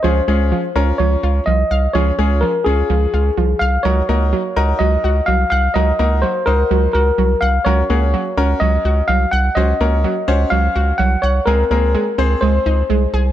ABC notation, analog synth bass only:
X:1
M:4/4
L:1/16
Q:1/4=126
K:Db
V:1 name="Analog synth bass" clef=bass
D,,2 D,,3 z D,,2 D,,2 D,,2 C,,2 C,,2 | D,,2 D,,3 z D,,2 D,,2 D,,2 C,,2 C,,2 | D,,2 D,,3 z D,,2 D,,2 D,,2 C,,2 C,,2 | D,,2 D,,3 z D,,2 D,,2 D,,2 C,,2 C,,2 |
D,,2 D,,3 z D,,2 D,,2 D,,2 C,,2 C,,2 | D,,2 D,,3 z D,,2 D,,2 D,,2 C,,2 C,,2 | D,,2 D,,3 z D,,2 D,,2 D,,2 C,,2 C,,2 |]